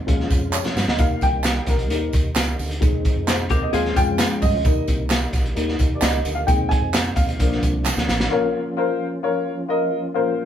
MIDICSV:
0, 0, Header, 1, 6, 480
1, 0, Start_track
1, 0, Tempo, 458015
1, 1038, Time_signature, 4, 2, 24, 8
1, 10953, End_track
2, 0, Start_track
2, 0, Title_t, "Upright piano"
2, 0, Program_c, 0, 0
2, 71, Note_on_c, 0, 56, 56
2, 77, Note_on_c, 0, 61, 50
2, 80, Note_on_c, 0, 65, 61
2, 564, Note_on_c, 0, 73, 83
2, 758, Note_off_c, 0, 56, 0
2, 761, Note_off_c, 0, 61, 0
2, 762, Note_off_c, 0, 65, 0
2, 925, Note_on_c, 0, 75, 87
2, 931, Note_off_c, 0, 73, 0
2, 1019, Note_on_c, 0, 55, 53
2, 1026, Note_on_c, 0, 58, 47
2, 1032, Note_on_c, 0, 63, 55
2, 1039, Note_on_c, 0, 77, 97
2, 1045, Note_off_c, 0, 75, 0
2, 1285, Note_off_c, 0, 77, 0
2, 1286, Note_on_c, 0, 79, 99
2, 1766, Note_on_c, 0, 70, 82
2, 1775, Note_off_c, 0, 79, 0
2, 1944, Note_off_c, 0, 55, 0
2, 1947, Note_off_c, 0, 58, 0
2, 1951, Note_off_c, 0, 63, 0
2, 1981, Note_on_c, 0, 55, 52
2, 1990, Note_on_c, 0, 58, 51
2, 1996, Note_on_c, 0, 63, 59
2, 2207, Note_off_c, 0, 70, 0
2, 2307, Note_off_c, 0, 55, 0
2, 2311, Note_off_c, 0, 58, 0
2, 2314, Note_off_c, 0, 63, 0
2, 2942, Note_on_c, 0, 56, 54
2, 2948, Note_on_c, 0, 60, 46
2, 2954, Note_on_c, 0, 63, 59
2, 3445, Note_on_c, 0, 72, 88
2, 3799, Note_on_c, 0, 75, 82
2, 3810, Note_off_c, 0, 72, 0
2, 3865, Note_off_c, 0, 56, 0
2, 3868, Note_off_c, 0, 60, 0
2, 3871, Note_off_c, 0, 63, 0
2, 3904, Note_on_c, 0, 56, 56
2, 3909, Note_on_c, 0, 61, 49
2, 3914, Note_on_c, 0, 77, 94
2, 3915, Note_on_c, 0, 65, 61
2, 3920, Note_off_c, 0, 75, 0
2, 4157, Note_on_c, 0, 79, 109
2, 4160, Note_off_c, 0, 77, 0
2, 4629, Note_on_c, 0, 75, 102
2, 4649, Note_off_c, 0, 79, 0
2, 4827, Note_off_c, 0, 56, 0
2, 4829, Note_off_c, 0, 61, 0
2, 4832, Note_off_c, 0, 65, 0
2, 4868, Note_on_c, 0, 55, 52
2, 4877, Note_on_c, 0, 58, 50
2, 4883, Note_on_c, 0, 63, 62
2, 5077, Note_off_c, 0, 75, 0
2, 5555, Note_off_c, 0, 55, 0
2, 5559, Note_off_c, 0, 58, 0
2, 5563, Note_off_c, 0, 63, 0
2, 5824, Note_on_c, 0, 55, 55
2, 5828, Note_on_c, 0, 58, 52
2, 5834, Note_on_c, 0, 63, 63
2, 6237, Note_on_c, 0, 74, 68
2, 6302, Note_on_c, 0, 75, 81
2, 6312, Note_off_c, 0, 74, 0
2, 6513, Note_off_c, 0, 55, 0
2, 6515, Note_off_c, 0, 58, 0
2, 6518, Note_off_c, 0, 63, 0
2, 6652, Note_on_c, 0, 77, 88
2, 6680, Note_off_c, 0, 75, 0
2, 6704, Note_off_c, 0, 77, 0
2, 6779, Note_on_c, 0, 79, 101
2, 6783, Note_on_c, 0, 56, 55
2, 6790, Note_on_c, 0, 60, 50
2, 6798, Note_on_c, 0, 63, 63
2, 7010, Note_on_c, 0, 80, 103
2, 7034, Note_off_c, 0, 79, 0
2, 7108, Note_off_c, 0, 56, 0
2, 7112, Note_off_c, 0, 60, 0
2, 7116, Note_off_c, 0, 63, 0
2, 7502, Note_on_c, 0, 77, 86
2, 7518, Note_off_c, 0, 80, 0
2, 7750, Note_on_c, 0, 53, 57
2, 7759, Note_on_c, 0, 58, 52
2, 7766, Note_on_c, 0, 62, 64
2, 7955, Note_off_c, 0, 77, 0
2, 8437, Note_off_c, 0, 53, 0
2, 8442, Note_off_c, 0, 58, 0
2, 8446, Note_off_c, 0, 62, 0
2, 8706, Note_on_c, 0, 65, 90
2, 8713, Note_on_c, 0, 46, 76
2, 8715, Note_on_c, 0, 70, 83
2, 8720, Note_on_c, 0, 73, 97
2, 9009, Note_off_c, 0, 65, 0
2, 9014, Note_off_c, 0, 70, 0
2, 9016, Note_off_c, 0, 73, 0
2, 9189, Note_on_c, 0, 65, 95
2, 9196, Note_on_c, 0, 70, 87
2, 9203, Note_on_c, 0, 72, 99
2, 9393, Note_off_c, 0, 46, 0
2, 9491, Note_off_c, 0, 65, 0
2, 9494, Note_off_c, 0, 70, 0
2, 9498, Note_off_c, 0, 72, 0
2, 9673, Note_on_c, 0, 65, 90
2, 9679, Note_on_c, 0, 70, 83
2, 9682, Note_on_c, 0, 73, 100
2, 9973, Note_off_c, 0, 65, 0
2, 9976, Note_off_c, 0, 70, 0
2, 9977, Note_off_c, 0, 73, 0
2, 10150, Note_on_c, 0, 65, 86
2, 10157, Note_on_c, 0, 70, 86
2, 10165, Note_on_c, 0, 75, 98
2, 10452, Note_off_c, 0, 65, 0
2, 10455, Note_off_c, 0, 70, 0
2, 10459, Note_off_c, 0, 75, 0
2, 10630, Note_on_c, 0, 65, 87
2, 10638, Note_on_c, 0, 46, 72
2, 10638, Note_on_c, 0, 70, 77
2, 10643, Note_on_c, 0, 72, 97
2, 10932, Note_off_c, 0, 65, 0
2, 10936, Note_off_c, 0, 70, 0
2, 10938, Note_off_c, 0, 72, 0
2, 10953, Note_off_c, 0, 46, 0
2, 10953, End_track
3, 0, Start_track
3, 0, Title_t, "Hollow-body jazz guitar"
3, 0, Program_c, 1, 26
3, 3674, Note_on_c, 1, 67, 76
3, 3679, Note_on_c, 1, 58, 68
3, 3901, Note_off_c, 1, 67, 0
3, 3904, Note_off_c, 1, 58, 0
3, 3908, Note_on_c, 1, 68, 82
3, 3914, Note_on_c, 1, 60, 68
3, 4138, Note_off_c, 1, 68, 0
3, 4141, Note_off_c, 1, 60, 0
3, 4152, Note_on_c, 1, 65, 78
3, 4162, Note_on_c, 1, 56, 64
3, 4836, Note_off_c, 1, 65, 0
3, 4842, Note_off_c, 1, 56, 0
3, 10953, End_track
4, 0, Start_track
4, 0, Title_t, "Tonewheel organ"
4, 0, Program_c, 2, 16
4, 0, Note_on_c, 2, 56, 61
4, 77, Note_on_c, 2, 65, 68
4, 81, Note_on_c, 2, 61, 59
4, 84, Note_on_c, 2, 53, 63
4, 1020, Note_off_c, 2, 56, 0
4, 1026, Note_off_c, 2, 65, 0
4, 1028, Note_off_c, 2, 61, 0
4, 1030, Note_off_c, 2, 53, 0
4, 1044, Note_on_c, 2, 51, 62
4, 1045, Note_on_c, 2, 55, 59
4, 1045, Note_on_c, 2, 58, 59
4, 1046, Note_on_c, 2, 63, 68
4, 2938, Note_off_c, 2, 55, 0
4, 2938, Note_off_c, 2, 58, 0
4, 2955, Note_on_c, 2, 56, 59
4, 2963, Note_on_c, 2, 60, 60
4, 3887, Note_off_c, 2, 51, 0
4, 3888, Note_off_c, 2, 63, 0
4, 3908, Note_off_c, 2, 60, 0
4, 3920, Note_on_c, 2, 61, 62
4, 3922, Note_on_c, 2, 53, 68
4, 3925, Note_on_c, 2, 65, 76
4, 4854, Note_off_c, 2, 56, 0
4, 4867, Note_off_c, 2, 61, 0
4, 4868, Note_off_c, 2, 53, 0
4, 4869, Note_off_c, 2, 65, 0
4, 4883, Note_on_c, 2, 58, 61
4, 4888, Note_on_c, 2, 63, 72
4, 4889, Note_on_c, 2, 51, 65
4, 4892, Note_on_c, 2, 55, 60
4, 5830, Note_off_c, 2, 63, 0
4, 5843, Note_on_c, 2, 63, 78
4, 6772, Note_off_c, 2, 51, 0
4, 6778, Note_on_c, 2, 56, 61
4, 6780, Note_off_c, 2, 58, 0
4, 6782, Note_on_c, 2, 60, 63
4, 6784, Note_on_c, 2, 51, 67
4, 6785, Note_off_c, 2, 55, 0
4, 7738, Note_off_c, 2, 56, 0
4, 7739, Note_off_c, 2, 60, 0
4, 7741, Note_off_c, 2, 51, 0
4, 7741, Note_off_c, 2, 63, 0
4, 7748, Note_on_c, 2, 50, 67
4, 7748, Note_on_c, 2, 62, 75
4, 7750, Note_on_c, 2, 58, 60
4, 7751, Note_on_c, 2, 53, 63
4, 8699, Note_off_c, 2, 53, 0
4, 8700, Note_off_c, 2, 58, 0
4, 8703, Note_off_c, 2, 50, 0
4, 8703, Note_off_c, 2, 62, 0
4, 8711, Note_on_c, 2, 53, 66
4, 8711, Note_on_c, 2, 61, 62
4, 8713, Note_on_c, 2, 58, 61
4, 8713, Note_on_c, 2, 65, 75
4, 10953, Note_off_c, 2, 53, 0
4, 10953, Note_off_c, 2, 58, 0
4, 10953, Note_off_c, 2, 61, 0
4, 10953, Note_off_c, 2, 65, 0
4, 10953, End_track
5, 0, Start_track
5, 0, Title_t, "Fingered electric bass"
5, 0, Program_c, 3, 33
5, 86, Note_on_c, 3, 39, 93
5, 276, Note_off_c, 3, 39, 0
5, 320, Note_on_c, 3, 41, 89
5, 609, Note_off_c, 3, 41, 0
5, 797, Note_on_c, 3, 43, 85
5, 894, Note_off_c, 3, 43, 0
5, 918, Note_on_c, 3, 38, 82
5, 1014, Note_off_c, 3, 38, 0
5, 1037, Note_on_c, 3, 39, 100
5, 1230, Note_off_c, 3, 39, 0
5, 1278, Note_on_c, 3, 36, 82
5, 1663, Note_off_c, 3, 36, 0
5, 1752, Note_on_c, 3, 34, 91
5, 1997, Note_off_c, 3, 34, 0
5, 1997, Note_on_c, 3, 39, 97
5, 2189, Note_off_c, 3, 39, 0
5, 2239, Note_on_c, 3, 39, 84
5, 2475, Note_off_c, 3, 39, 0
5, 2475, Note_on_c, 3, 37, 93
5, 2668, Note_off_c, 3, 37, 0
5, 2718, Note_on_c, 3, 38, 92
5, 2909, Note_off_c, 3, 38, 0
5, 2953, Note_on_c, 3, 39, 103
5, 3243, Note_off_c, 3, 39, 0
5, 3324, Note_on_c, 3, 41, 92
5, 3671, Note_off_c, 3, 41, 0
5, 3671, Note_on_c, 3, 39, 91
5, 3865, Note_off_c, 3, 39, 0
5, 3916, Note_on_c, 3, 39, 96
5, 4108, Note_off_c, 3, 39, 0
5, 4155, Note_on_c, 3, 41, 91
5, 4443, Note_off_c, 3, 41, 0
5, 4638, Note_on_c, 3, 43, 91
5, 4732, Note_off_c, 3, 43, 0
5, 4750, Note_on_c, 3, 38, 81
5, 4847, Note_off_c, 3, 38, 0
5, 4873, Note_on_c, 3, 39, 110
5, 5066, Note_off_c, 3, 39, 0
5, 5116, Note_on_c, 3, 36, 85
5, 5501, Note_off_c, 3, 36, 0
5, 5589, Note_on_c, 3, 34, 92
5, 5784, Note_off_c, 3, 34, 0
5, 5834, Note_on_c, 3, 39, 102
5, 6027, Note_off_c, 3, 39, 0
5, 6075, Note_on_c, 3, 39, 91
5, 6267, Note_off_c, 3, 39, 0
5, 6306, Note_on_c, 3, 37, 95
5, 6502, Note_off_c, 3, 37, 0
5, 6547, Note_on_c, 3, 38, 97
5, 6743, Note_off_c, 3, 38, 0
5, 6789, Note_on_c, 3, 39, 104
5, 7081, Note_off_c, 3, 39, 0
5, 7143, Note_on_c, 3, 41, 88
5, 7438, Note_off_c, 3, 41, 0
5, 7510, Note_on_c, 3, 39, 95
5, 7756, Note_off_c, 3, 39, 0
5, 7756, Note_on_c, 3, 34, 97
5, 7949, Note_off_c, 3, 34, 0
5, 7995, Note_on_c, 3, 36, 92
5, 8285, Note_off_c, 3, 36, 0
5, 8352, Note_on_c, 3, 38, 97
5, 8450, Note_off_c, 3, 38, 0
5, 8472, Note_on_c, 3, 33, 95
5, 8667, Note_off_c, 3, 33, 0
5, 10953, End_track
6, 0, Start_track
6, 0, Title_t, "Drums"
6, 84, Note_on_c, 9, 42, 86
6, 85, Note_on_c, 9, 36, 87
6, 188, Note_off_c, 9, 42, 0
6, 189, Note_off_c, 9, 36, 0
6, 209, Note_on_c, 9, 38, 31
6, 314, Note_off_c, 9, 38, 0
6, 318, Note_on_c, 9, 54, 56
6, 321, Note_on_c, 9, 36, 88
6, 327, Note_on_c, 9, 42, 73
6, 423, Note_off_c, 9, 54, 0
6, 426, Note_off_c, 9, 36, 0
6, 432, Note_off_c, 9, 42, 0
6, 556, Note_on_c, 9, 39, 102
6, 556, Note_on_c, 9, 54, 98
6, 661, Note_off_c, 9, 39, 0
6, 661, Note_off_c, 9, 54, 0
6, 686, Note_on_c, 9, 38, 68
6, 791, Note_off_c, 9, 38, 0
6, 804, Note_on_c, 9, 54, 58
6, 807, Note_on_c, 9, 38, 86
6, 908, Note_off_c, 9, 54, 0
6, 911, Note_off_c, 9, 38, 0
6, 925, Note_on_c, 9, 38, 92
6, 1030, Note_off_c, 9, 38, 0
6, 1031, Note_on_c, 9, 54, 61
6, 1036, Note_on_c, 9, 36, 108
6, 1038, Note_on_c, 9, 42, 74
6, 1136, Note_off_c, 9, 54, 0
6, 1141, Note_off_c, 9, 36, 0
6, 1143, Note_off_c, 9, 42, 0
6, 1270, Note_on_c, 9, 54, 40
6, 1279, Note_on_c, 9, 42, 73
6, 1280, Note_on_c, 9, 36, 88
6, 1375, Note_off_c, 9, 54, 0
6, 1384, Note_off_c, 9, 42, 0
6, 1385, Note_off_c, 9, 36, 0
6, 1508, Note_on_c, 9, 39, 87
6, 1508, Note_on_c, 9, 54, 89
6, 1517, Note_on_c, 9, 38, 103
6, 1520, Note_on_c, 9, 42, 85
6, 1613, Note_off_c, 9, 39, 0
6, 1613, Note_off_c, 9, 54, 0
6, 1622, Note_off_c, 9, 38, 0
6, 1625, Note_off_c, 9, 42, 0
6, 1744, Note_on_c, 9, 42, 72
6, 1752, Note_on_c, 9, 36, 79
6, 1754, Note_on_c, 9, 54, 49
6, 1757, Note_on_c, 9, 38, 34
6, 1849, Note_off_c, 9, 42, 0
6, 1857, Note_off_c, 9, 36, 0
6, 1859, Note_off_c, 9, 54, 0
6, 1862, Note_off_c, 9, 38, 0
6, 1874, Note_on_c, 9, 42, 51
6, 1979, Note_off_c, 9, 42, 0
6, 1993, Note_on_c, 9, 54, 36
6, 1994, Note_on_c, 9, 42, 85
6, 2098, Note_off_c, 9, 54, 0
6, 2099, Note_off_c, 9, 42, 0
6, 2230, Note_on_c, 9, 54, 55
6, 2237, Note_on_c, 9, 36, 96
6, 2240, Note_on_c, 9, 42, 76
6, 2335, Note_off_c, 9, 54, 0
6, 2342, Note_off_c, 9, 36, 0
6, 2345, Note_off_c, 9, 42, 0
6, 2470, Note_on_c, 9, 39, 103
6, 2470, Note_on_c, 9, 54, 99
6, 2471, Note_on_c, 9, 42, 84
6, 2473, Note_on_c, 9, 38, 105
6, 2575, Note_off_c, 9, 39, 0
6, 2575, Note_off_c, 9, 54, 0
6, 2576, Note_off_c, 9, 42, 0
6, 2578, Note_off_c, 9, 38, 0
6, 2715, Note_on_c, 9, 46, 54
6, 2717, Note_on_c, 9, 54, 58
6, 2820, Note_off_c, 9, 46, 0
6, 2822, Note_off_c, 9, 54, 0
6, 2839, Note_on_c, 9, 42, 56
6, 2943, Note_off_c, 9, 42, 0
6, 2953, Note_on_c, 9, 42, 68
6, 2955, Note_on_c, 9, 36, 109
6, 2959, Note_on_c, 9, 54, 61
6, 3058, Note_off_c, 9, 42, 0
6, 3059, Note_off_c, 9, 36, 0
6, 3063, Note_off_c, 9, 54, 0
6, 3195, Note_on_c, 9, 42, 72
6, 3199, Note_on_c, 9, 36, 88
6, 3203, Note_on_c, 9, 54, 40
6, 3300, Note_off_c, 9, 42, 0
6, 3304, Note_off_c, 9, 36, 0
6, 3308, Note_off_c, 9, 54, 0
6, 3434, Note_on_c, 9, 38, 101
6, 3437, Note_on_c, 9, 42, 83
6, 3439, Note_on_c, 9, 39, 87
6, 3439, Note_on_c, 9, 54, 85
6, 3539, Note_off_c, 9, 38, 0
6, 3542, Note_off_c, 9, 42, 0
6, 3544, Note_off_c, 9, 39, 0
6, 3544, Note_off_c, 9, 54, 0
6, 3662, Note_on_c, 9, 42, 75
6, 3671, Note_on_c, 9, 36, 82
6, 3681, Note_on_c, 9, 54, 53
6, 3767, Note_off_c, 9, 42, 0
6, 3776, Note_off_c, 9, 36, 0
6, 3785, Note_off_c, 9, 54, 0
6, 3912, Note_on_c, 9, 42, 86
6, 3917, Note_on_c, 9, 54, 39
6, 4016, Note_off_c, 9, 42, 0
6, 4022, Note_off_c, 9, 54, 0
6, 4036, Note_on_c, 9, 38, 35
6, 4141, Note_off_c, 9, 38, 0
6, 4154, Note_on_c, 9, 42, 79
6, 4155, Note_on_c, 9, 36, 86
6, 4156, Note_on_c, 9, 54, 55
6, 4259, Note_off_c, 9, 42, 0
6, 4260, Note_off_c, 9, 36, 0
6, 4261, Note_off_c, 9, 54, 0
6, 4387, Note_on_c, 9, 42, 90
6, 4389, Note_on_c, 9, 38, 111
6, 4393, Note_on_c, 9, 39, 97
6, 4393, Note_on_c, 9, 54, 96
6, 4492, Note_off_c, 9, 42, 0
6, 4494, Note_off_c, 9, 38, 0
6, 4498, Note_off_c, 9, 39, 0
6, 4498, Note_off_c, 9, 54, 0
6, 4630, Note_on_c, 9, 46, 54
6, 4633, Note_on_c, 9, 54, 61
6, 4638, Note_on_c, 9, 36, 84
6, 4735, Note_off_c, 9, 46, 0
6, 4738, Note_off_c, 9, 54, 0
6, 4743, Note_off_c, 9, 36, 0
6, 4868, Note_on_c, 9, 42, 73
6, 4872, Note_on_c, 9, 36, 116
6, 4874, Note_on_c, 9, 54, 64
6, 4973, Note_off_c, 9, 42, 0
6, 4977, Note_off_c, 9, 36, 0
6, 4979, Note_off_c, 9, 54, 0
6, 5109, Note_on_c, 9, 54, 42
6, 5113, Note_on_c, 9, 42, 72
6, 5117, Note_on_c, 9, 36, 89
6, 5214, Note_off_c, 9, 54, 0
6, 5218, Note_off_c, 9, 42, 0
6, 5222, Note_off_c, 9, 36, 0
6, 5345, Note_on_c, 9, 39, 87
6, 5345, Note_on_c, 9, 54, 87
6, 5354, Note_on_c, 9, 38, 114
6, 5356, Note_on_c, 9, 42, 88
6, 5450, Note_off_c, 9, 39, 0
6, 5450, Note_off_c, 9, 54, 0
6, 5459, Note_off_c, 9, 38, 0
6, 5461, Note_off_c, 9, 42, 0
6, 5584, Note_on_c, 9, 42, 73
6, 5590, Note_on_c, 9, 36, 80
6, 5592, Note_on_c, 9, 54, 51
6, 5598, Note_on_c, 9, 38, 34
6, 5689, Note_off_c, 9, 42, 0
6, 5695, Note_off_c, 9, 36, 0
6, 5697, Note_off_c, 9, 54, 0
6, 5702, Note_off_c, 9, 38, 0
6, 5718, Note_on_c, 9, 42, 52
6, 5823, Note_off_c, 9, 42, 0
6, 5832, Note_on_c, 9, 42, 84
6, 5833, Note_on_c, 9, 54, 37
6, 5937, Note_off_c, 9, 42, 0
6, 5937, Note_off_c, 9, 54, 0
6, 5955, Note_on_c, 9, 38, 34
6, 6060, Note_off_c, 9, 38, 0
6, 6068, Note_on_c, 9, 54, 60
6, 6074, Note_on_c, 9, 36, 91
6, 6076, Note_on_c, 9, 42, 80
6, 6173, Note_off_c, 9, 54, 0
6, 6179, Note_off_c, 9, 36, 0
6, 6181, Note_off_c, 9, 42, 0
6, 6307, Note_on_c, 9, 39, 103
6, 6307, Note_on_c, 9, 54, 98
6, 6311, Note_on_c, 9, 42, 86
6, 6313, Note_on_c, 9, 38, 106
6, 6411, Note_off_c, 9, 39, 0
6, 6411, Note_off_c, 9, 54, 0
6, 6416, Note_off_c, 9, 42, 0
6, 6417, Note_off_c, 9, 38, 0
6, 6550, Note_on_c, 9, 54, 59
6, 6553, Note_on_c, 9, 42, 75
6, 6655, Note_off_c, 9, 54, 0
6, 6657, Note_off_c, 9, 42, 0
6, 6791, Note_on_c, 9, 42, 74
6, 6791, Note_on_c, 9, 54, 61
6, 6792, Note_on_c, 9, 36, 111
6, 6895, Note_off_c, 9, 54, 0
6, 6896, Note_off_c, 9, 42, 0
6, 6897, Note_off_c, 9, 36, 0
6, 7034, Note_on_c, 9, 42, 76
6, 7037, Note_on_c, 9, 36, 90
6, 7139, Note_off_c, 9, 42, 0
6, 7142, Note_off_c, 9, 36, 0
6, 7272, Note_on_c, 9, 39, 86
6, 7272, Note_on_c, 9, 54, 88
6, 7275, Note_on_c, 9, 38, 115
6, 7278, Note_on_c, 9, 42, 89
6, 7377, Note_off_c, 9, 39, 0
6, 7377, Note_off_c, 9, 54, 0
6, 7380, Note_off_c, 9, 38, 0
6, 7383, Note_off_c, 9, 42, 0
6, 7502, Note_on_c, 9, 42, 76
6, 7510, Note_on_c, 9, 36, 85
6, 7511, Note_on_c, 9, 54, 52
6, 7607, Note_off_c, 9, 42, 0
6, 7614, Note_off_c, 9, 36, 0
6, 7616, Note_off_c, 9, 54, 0
6, 7635, Note_on_c, 9, 42, 54
6, 7740, Note_off_c, 9, 42, 0
6, 7750, Note_on_c, 9, 42, 84
6, 7754, Note_on_c, 9, 54, 40
6, 7756, Note_on_c, 9, 36, 95
6, 7855, Note_off_c, 9, 42, 0
6, 7859, Note_off_c, 9, 54, 0
6, 7861, Note_off_c, 9, 36, 0
6, 7880, Note_on_c, 9, 38, 35
6, 7985, Note_off_c, 9, 38, 0
6, 7994, Note_on_c, 9, 36, 92
6, 7995, Note_on_c, 9, 54, 60
6, 7996, Note_on_c, 9, 42, 78
6, 8098, Note_off_c, 9, 36, 0
6, 8100, Note_off_c, 9, 54, 0
6, 8101, Note_off_c, 9, 42, 0
6, 8234, Note_on_c, 9, 39, 100
6, 8234, Note_on_c, 9, 54, 101
6, 8238, Note_on_c, 9, 38, 58
6, 8338, Note_off_c, 9, 39, 0
6, 8338, Note_off_c, 9, 54, 0
6, 8342, Note_off_c, 9, 38, 0
6, 8361, Note_on_c, 9, 38, 70
6, 8466, Note_off_c, 9, 38, 0
6, 8474, Note_on_c, 9, 38, 97
6, 8483, Note_on_c, 9, 54, 59
6, 8579, Note_off_c, 9, 38, 0
6, 8587, Note_off_c, 9, 54, 0
6, 8594, Note_on_c, 9, 38, 92
6, 8699, Note_off_c, 9, 38, 0
6, 10953, End_track
0, 0, End_of_file